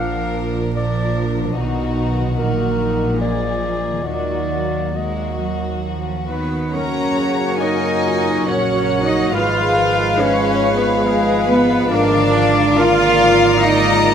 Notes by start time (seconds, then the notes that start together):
Already playing: A#1 A#2 F3 A#3 D4 F4 A#4 D5
0.00 F5
0.76 F3 D4 A#4 D5
1.39 B2
1.44 F#3
1.48 D#4
1.53 B1 B2 F#4 D#5
1.57 D#3 D#4
2.20 A#2
2.25 F#3
2.29 D#4
2.34 A#2 D#4 F#4 A#4
2.38 A#1 D#3
3.05 A#2
3.09 G#3
3.14 F4
3.18 G#4 A#4 D5
3.22 F3 A#3
3.91 D#3
3.95 F#3
4.00 F#4
4.04 F#4 A#4 D5
4.08 D#2 D#3 F#3 A#3
4.97 F#3 G#3 A#3 F#4 D#5
5.42 F#3
5.86 F3
6.28 D#3 B3 B4
6.73 F#2 C#3 F#3 A#3 C#4 F#4 A#4 C#5 F#5 A#5
6.96 C#3
7.17 A#3 G#4
7.40 F#4
7.61 D#4 F#4 A#4 D#5 G#5
7.83 F#4
8.04 F4 F#5
8.26 A#5
8.47 A#1 C#4 F#4 A#4 C#5 F#5
8.69 A#4
9.05 D#4 D#5
9.13 A#3
9.32 G#1 G#2 F3 G#3 F4 G#4 B4 F5
9.56 G#3
9.77 F3 A#4
9.99 F4
10.19 C#4 G#4 B4 C#5
10.41 F4
10.63 F5
10.76 B3 B4
10.84 B5
11.05 G#3 G#4 B4 F5
11.27 F4
11.48 B3 B4
11.90 G#1 G#2 A#3 D4 F4 A#4 D5 F5
12.13 D3
12.34 F3 D5
12.57 F4
12.77 F4 A#4 D5 F5
13.00 F4
13.21 F5
13.43 A#5
13.63 D#4 D5 D#5 F5 A#5
13.85 F4
14.07 A#4